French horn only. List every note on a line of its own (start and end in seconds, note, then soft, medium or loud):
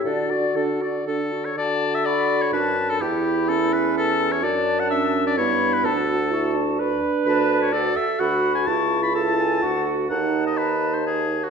0.06 1.33 F#4 medium
1.57 2.55 F#4 medium
2.54 3.01 D4 medium
3.02 4.45 E4 medium
4.43 4.92 D4 medium
4.91 5.39 C#4 medium
5.38 5.87 B3 medium
5.85 6.07 F#4 medium
6.07 6.33 F#4 medium
6.31 6.57 E4 medium
6.56 7.75 D4 medium
7.73 8.06 F#4 medium
8.20 8.70 F#4 medium
8.68 9.15 E4 medium
9.16 9.64 E4 medium
9.63 10.09 F#4 medium
10.10 11.50 D#4 medium